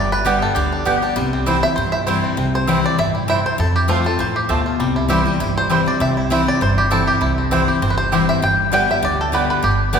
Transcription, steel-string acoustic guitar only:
0.00 0.53 G2 medium
0.25 0.54 D3 medium
0.25 0.55 G3 loud
0.25 0.55 B3 loud
0.25 0.55 G4 loud
0.56 0.84 D3 loud
0.85 1.02 D3 medium
0.85 1.02 G3 medium
0.85 1.02 B3 medium
0.85 1.01 G4 loud
1.02 1.17 B3 medium
1.02 1.16 G4 medium
1.16 1.74 C3 loud
1.46 1.62 E3 medium
1.46 1.63 G3 loud
1.46 1.63 C4 loud
1.46 1.62 E4 loud
1.63 1.77 C4 soft
1.63 1.76 E4 medium
1.78 2.35 G2 loud
2.07 2.36 E3 medium
2.07 2.36 G3 medium
2.07 2.37 C4 medium
2.07 2.37 E4 medium
2.37 2.95 C3 medium
2.67 2.84 E3 loud
2.67 2.84 G3 medium
2.67 2.84 C4 loud
2.67 2.83 E4 loud
2.84 2.98 C4 soft
2.84 2.98 E4 medium
2.98 3.27 A2 medium
3.28 3.57 G2 medium
3.58 4.16 F2 medium
3.88 4.04 F3 medium
3.88 4.05 A3 medium
3.88 4.05 C4 medium
3.88 4.03 F4 medium
4.04 4.19 C4 medium
4.04 4.18 F4 medium
4.19 4.48 A2 medium
4.49 4.78 B2 medium
4.80 5.38 C3 medium
5.09 5.25 E3 medium
5.09 5.26 G3 medium
5.09 5.26 C4 loud
5.09 5.24 E4 loud
5.25 5.40 C4 soft
5.25 5.39 E4 medium
5.40 5.98 G2 medium
5.70 5.86 E3 medium
5.70 5.86 G3 medium
5.70 5.86 C4 medium
5.70 5.85 E4 loud
5.86 6.01 C4 medium
5.86 6.00 E4 medium
6.00 6.58 C3 medium
6.30 6.46 E3 loud
6.30 6.47 G3 medium
6.30 6.47 C4 loud
6.30 6.45 E4 loud
6.47 6.61 C4 soft
6.47 6.60 E4 medium
6.61 7.19 G2 medium
6.91 7.20 E3 medium
6.91 7.20 G3 medium
6.91 7.20 C4 medium
6.91 7.21 E4 medium
7.21 7.79 C3 medium
7.51 7.67 E3 loud
7.51 7.68 G3 medium
7.51 7.68 C4 loud
7.51 7.67 E4 loud
7.68 7.82 C4 soft
7.68 7.81 E4 medium
7.82 8.40 G2 medium
8.12 8.41 E3 medium
8.12 8.41 G3 medium
8.12 8.42 C4 medium
8.12 8.42 E4 medium
8.42 9.00 G2 medium
8.72 8.88 D3 medium
8.72 8.88 G3 loud
8.72 8.89 B3 loud
8.72 8.88 G4 loud
8.89 9.03 B3 soft
8.89 9.02 G4 medium
9.03 9.31 D3 loud
9.32 9.61 D3 medium
9.32 9.62 G3 medium
9.32 9.62 B3 medium
9.32 9.62 G4 loud
9.63 9.99 G2 medium
9.93 9.99 D3 loud
9.93 9.99 G3 medium
9.93 9.99 B3 loud
9.93 9.99 G4 loud

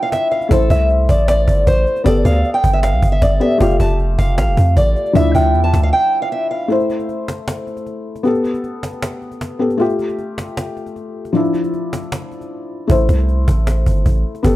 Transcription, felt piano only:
0.00 0.47 F3 medium
0.00 0.48 D4 medium
0.00 0.49 E4 medium
0.49 2.02 A3 medium
0.49 2.02 E4 medium
0.49 2.03 C5 medium
2.04 3.38 B3 medium
2.04 3.39 G4 medium
2.04 3.40 A4 medium
3.40 3.60 B3 medium
3.40 3.60 G4 soft
3.40 3.61 A4 medium
3.58 5.11 A3 medium
3.58 5.12 F4 medium
3.58 5.13 G4 medium
5.13 6.66 F3 medium
5.13 6.67 D4 medium
5.13 6.68 E4 medium
6.68 8.21 A3 medium
6.68 8.22 E4 medium
6.68 8.23 C5 medium
8.23 9.57 B3 medium
8.23 9.58 G4 medium
8.23 9.59 A4 medium
9.59 9.79 B3 medium
9.59 9.80 G4 medium
9.59 9.80 A4 medium
9.78 11.30 A3 medium
9.78 11.31 F4 medium
9.78 11.32 G4 medium
11.33 12.85 F3 medium
11.33 12.86 D4 medium
11.33 12.87 E4 medium
12.87 14.40 A3 medium
12.87 14.41 E4 medium
12.87 14.42 C5 medium
14.43 14.56 B3 medium
14.43 14.56 G4 medium
14.43 14.56 A4 medium

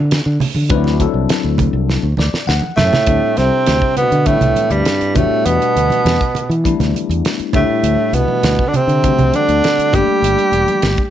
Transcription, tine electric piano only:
0.69 0.96 F#3 medium
0.69 0.96 C4 medium
0.69 0.96 D4 medium
0.69 0.97 E4 medium
0.69 0.97 B4 medium
1.00 2.06 F#3 medium
1.00 2.06 C4 medium
1.00 2.06 D4 medium
1.00 2.06 E4 medium
1.00 2.07 A4 medium
2.19 2.46 D5 medium
2.47 2.75 F#5 medium
2.78 3.05 A5 medium
3.06 4.13 G3 medium
3.06 4.14 C4 medium
3.06 4.14 D4 medium
3.06 4.14 E4 soft
3.06 4.15 A4 medium
4.25 5.13 G3 medium
4.25 5.15 C4 soft
4.25 5.15 D4 medium
4.25 5.16 E4 medium
4.25 5.16 B4 medium
5.15 6.22 G3 medium
5.15 6.22 A3 medium
5.15 6.23 B3 medium
5.15 6.23 D4 medium
5.15 6.23 F#4 medium
6.64 7.52 G3 medium
6.64 7.52 A3 medium
6.64 7.54 B3 medium
6.64 7.53 D4 medium
6.64 7.54 E4 medium
7.53 8.61 G3 medium
7.53 8.61 A3 medium
7.53 8.62 D4 medium
7.53 8.62 E4 medium
9.03 9.92 G3 medium
9.03 9.93 A3 medium
9.03 9.93 C4 medium
9.03 9.94 D4 medium
9.03 9.94 F#4 medium
9.94 11.01 G3 medium
9.94 11.01 A3 medium
9.94 11.01 A#3 medium
9.94 11.02 D4 medium
9.94 11.02 G4 medium

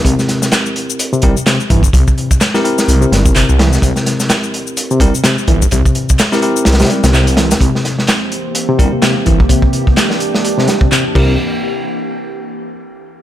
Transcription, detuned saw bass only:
0.05 0.14 C2 loud
1.23 1.33 G1 medium
1.70 1.88 G1 medium
1.93 2.03 C2 medium
2.88 3.06 C2 medium
3.12 3.43 G1 medium
3.49 3.78 C2 medium
3.82 3.92 C2 loud
5.00 5.10 G1 medium
5.48 5.66 G1 medium
5.72 5.82 C2 medium
6.67 6.84 C2 medium
7.03 7.56 C2 loud
7.61 7.70 C2 medium
8.79 8.89 G1 medium
9.27 9.44 G1 medium
11.15 11.37 C2 loud

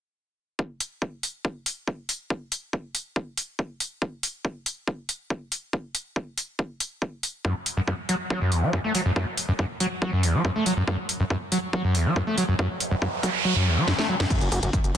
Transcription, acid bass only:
7.45 7.54 F#2 medium
7.77 7.81 F#2 loud
7.88 7.94 F#2 medium
8.09 8.15 F#3 medium
8.30 8.39 F#3 medium
8.41 8.53 F#2 medium
8.52 8.64 E2 medium
8.63 8.71 F#3 medium
8.73 8.79 F#2 medium
8.84 8.93 A3 medium
8.95 9.01 F#3 medium
9.06 9.11 F#2 loud
9.16 9.25 F#2 medium
9.48 9.52 F#2 loud
9.59 9.65 F#2 medium
9.80 9.86 F#3 medium
10.02 10.11 F#3 medium
10.13 10.25 F#2 medium
10.23 10.36 E2 medium
10.34 10.43 F#3 medium
10.45 10.51 F#2 medium
10.56 10.64 A3 medium
10.66 10.72 F#3 medium
10.77 10.83 F#2 loud
10.88 10.97 F#2 medium
11.20 11.23 F#2 loud
11.30 11.36 F#2 medium
11.52 11.58 F#3 medium
11.73 11.82 F#3 medium
11.84 11.96 F#2 medium
11.95 12.07 E2 medium
12.06 12.14 F#3 medium
12.16 12.22 F#2 medium
12.27 12.36 A3 medium
12.38 12.44 F#3 medium
12.48 12.54 F#2 loud
12.59 12.68 F#2 medium
12.91 12.95 F#2 loud
13.02 13.08 F#2 medium
13.23 13.29 F#3 medium
13.45 13.54 F#3 medium
13.56 13.68 F#2 medium
13.66 13.79 E2 medium
13.77 13.86 F#3 medium
13.88 13.94 F#2 medium
13.99 14.07 A3 medium
14.09 14.15 F#3 medium
14.20 14.26 F#2 loud
14.30 14.39 F#2 medium
14.63 14.66 F#2 loud
14.73 14.79 F#2 medium

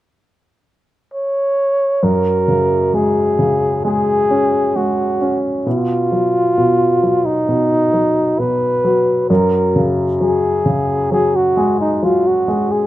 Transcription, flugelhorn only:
1.14 2.05 C#5 medium
2.04 2.97 A#4 medium
2.95 3.85 G#4 medium
3.86 4.77 G#4 medium
4.76 5.39 F#4 medium
5.67 7.27 F4 medium
7.26 8.41 D#4 medium
8.40 9.29 B4 medium
9.30 9.90 A#4 medium
10.22 11.08 G#4 medium
11.13 11.38 G#4 medium
11.36 11.80 F#4 medium
11.81 12.05 D#4 medium
12.04 12.29 F4 medium
12.27 12.73 F#4 medium
12.72 12.87 G#4 medium

